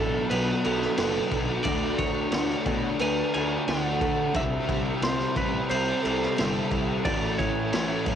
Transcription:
Already playing: A1 B2 F#3 B3 D4 E4 A4 F#5 B5
0.01 F#3
0.30 B1 B2 F#3 B3 D4 B4, crash
0.64 B1 B2 F#3 B3 A4, crash
0.82 snare
0.97 F#1 B2 F#3 B3 A4, snare, crash
1.31 B1 A4, kick, crash
1.64 D2 D3 F#3 A3 D4 F#4 D5 C#6, kick, crash
1.98 E4 C#5, kick, crash
2.32 D2 D3 A3 F#4, snare, crash
2.36 D4
2.50 snare
2.65 B2 A3 D4 E4, kick, crash
2.99 D2 D3 F#3 A3 D4 B4 G#5, crash
3.34 D2 D3 A3 D4 A4 G#5, crash
3.68 D2 D3 A3 D4 A4 F#5, snare, crash
4.01 A4, kick, crash
4.34 C2 C3 G3 C4 E4 F#4 E5 B5, kick, crash
4.69 C2 E4, kick, crash
5.01 C2 C3 G3 C4 F#4 C5, snare, crash
5.19 snare
5.36 A1 G3 C4 E4 B4, kick, crash
5.69 C2 C3 G3 C4 C5, crash
5.74 E4
6.02 C2 G3 C4 A4, crash
6.07 C3
6.22 snare
6.36 G1 C3 G3 A4, snare, crash
6.41 C4
6.71 C2 A4, kick, crash
7.03 A1 A2 E3 A3 C#4 F#4 A4 D5 E5 G#5 C#6, kick, crash
7.08 E4
7.38 E4 C#5, kick, crash
7.73 A1 A2 E3 A3 F#4, snare, crash
8.06 F#2 E3 A3 E4, kick, crash

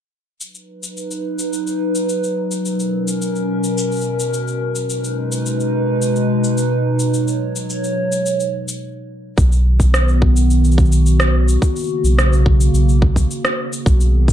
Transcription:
0.40 F#3 D#4 B4, cabasa
0.55 cabasa
0.83 cabasa
0.97 cabasa
1.11 cabasa
1.39 cabasa
1.53 cabasa
1.67 cabasa
1.95 cabasa
2.09 cabasa
2.24 cabasa
2.51 cabasa
2.64 B2 C#4 A#4, cabasa
2.80 cabasa
3.08 cabasa
3.22 cabasa
3.36 cabasa
3.64 cabasa
3.78 cabasa
3.92 cabasa
3.94 cabasa
3.96 cabasa
3.99 cabasa
4.01 cabasa
4.04 cabasa
4.20 cabasa
4.34 cabasa
4.48 cabasa
4.76 cabasa
4.88 B2 G#3 D#4 B4, cabasa
5.04 cabasa
5.32 cabasa
5.46 cabasa
5.60 cabasa
6.02 cabasa
6.16 cabasa
6.44 cabasa
6.58 cabasa
6.99 cabasa
7.14 F#3 C#5, cabasa
7.28 cabasa
7.56 cabasa
7.70 cabasa
7.84 cabasa
8.12 cabasa
8.26 cabasa
8.40 cabasa
8.68 cabasa
9.37 B1 D#3 B3 F#4, kick, cabasa
9.52 cabasa
9.80 kick, cabasa
9.94 cross-stick, cabasa
10.08 cabasa
10.22 kick
10.36 cabasa
10.51 cabasa
10.65 cabasa
10.72 cabasa
10.78 kick, cabasa
10.85 cabasa
10.92 cabasa
11.06 cabasa
11.20 cross-stick, cabasa
11.48 cabasa
11.62 C#3 A#3, kick, cabasa
11.76 cabasa
11.79 cabasa
11.81 cabasa
11.84 cabasa
11.86 cabasa
11.88 cabasa
12.04 B1, cabasa
12.19 cross-stick, cabasa
12.33 cabasa
12.46 kick
12.61 cabasa
12.74 B1, cabasa
12.89 cabasa
13.02 kick
13.16 kick, cabasa
13.31 cabasa
13.45 cross-stick, cabasa
13.73 cabasa
13.86 B1 D#3 B3 G#4, kick, cabasa
14.01 cabasa
14.28 kick, cabasa

